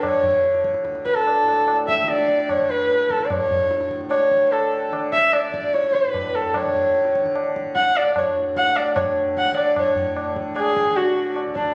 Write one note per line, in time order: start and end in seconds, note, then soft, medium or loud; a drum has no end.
0.00 0.83 D2 medium
0.00 1.42 A2 medium
0.00 0.24 D3 medium
0.00 0.61 C#5 medium
0.00 tabla na medium
0.00 tabla ge medium
0.23 2.01 D3 medium
0.23 tabla ge medium
0.44 tabla te medium
0.54 tabla te medium
0.64 tabla ke medium
0.74 tabla te medium
0.83 3.16 D2 medium
0.83 tabla te medium
0.95 tabla te medium
1.05 1.16 B4 medium
1.05 tabla ke medium
1.15 1.77 A4 medium
1.15 tabla te medium
1.27 tabla na medium
1.42 3.76 A2 medium
1.48 tabla na medium
1.68 tabla na medium
1.88 2.00 E5 medium
1.88 tabla ke medium
2.00 2.60 D3 medium
2.00 2.10 E5 medium
2.08 2.52 D5 medium
2.08 tabla te medium
2.19 tabla te medium
2.29 tabla ke medium
2.39 tabla te medium
2.49 2.72 C#5 medium
2.49 tabla na medium
2.49 tabla ge medium
2.60 4.33 D3 medium
2.70 3.12 B4 medium
2.70 tabla te medium
2.90 tabla te medium
3.01 tabla te medium
3.10 3.26 A4 medium
3.10 tabla ke medium
3.17 5.48 D2 medium
3.17 tabla te medium
3.24 3.35 D5 medium
3.30 3.93 C#5 medium
3.30 tabla na medium
3.30 tabla ge medium
3.51 tabla ge medium
3.71 tabla te medium
3.76 6.05 A2 medium
3.81 tabla te medium
3.91 tabla ke medium
4.01 tabla te medium
4.11 4.54 C#5 loud
4.11 tabla na medium
4.31 4.91 D3 medium
4.31 tabla ke medium
4.52 4.93 A4 medium
4.52 tabla na medium
4.72 tabla na soft
4.91 6.64 D3 medium
4.91 tabla na medium
5.13 5.35 E5 medium
5.13 tabla ke medium
5.33 5.75 D5 medium
5.33 tabla na medium
5.49 7.78 D2 medium
5.54 tabla ke medium
5.74 5.96 C#5 medium
5.74 tabla te medium
5.84 tabla te medium
5.94 6.36 B4 medium
5.94 tabla ke medium
6.05 8.37 A2 medium
6.05 tabla te medium
6.14 tabla na medium
6.14 tabla ge medium
6.34 6.58 A4 medium
6.34 tabla ge soft
6.54 7.16 C#5 medium
6.54 tabla na medium
6.54 tabla ge medium
6.64 7.23 D3 medium
6.75 tabla ge medium
6.95 tabla te medium
7.05 tabla te medium
7.15 tabla ke medium
7.23 8.93 D3 medium
7.23 tabla te medium
7.36 tabla na medium
7.56 tabla ke medium
7.76 11.46 D2 medium
7.76 7.98 F#5 medium
7.76 tabla ke medium
7.96 8.16 D5 medium
7.96 tabla na medium
8.16 8.36 C#5 medium
8.16 tabla na medium
8.16 tabla ge medium
8.37 9.76 A2 medium
8.56 8.78 F#5 medium
8.56 tabla ke medium
8.76 8.95 D5 medium
8.76 tabla na medium
8.93 9.51 D3 medium
8.93 9.15 C#5 medium
8.93 tabla na medium
8.93 tabla ge medium
9.37 9.56 F#5 medium
9.37 tabla ke medium
9.51 10.33 D3 medium
9.57 9.76 D5 medium
9.57 tabla na medium
9.76 11.74 A2 medium
9.76 10.33 C#5 medium
9.76 tabla na medium
9.76 tabla ge medium
9.96 tabla ge medium
10.16 tabla na medium
10.33 10.90 D3 medium
10.33 tabla ke medium
10.56 10.98 G#4 medium
10.56 tabla na medium
10.77 tabla ke medium
10.90 11.74 D3 medium
10.96 11.36 F#4 medium
10.96 tabla na medium
11.16 tabla na soft
11.36 tabla na medium
11.46 11.74 D2 medium
11.55 11.74 D4 medium
11.55 tabla ke medium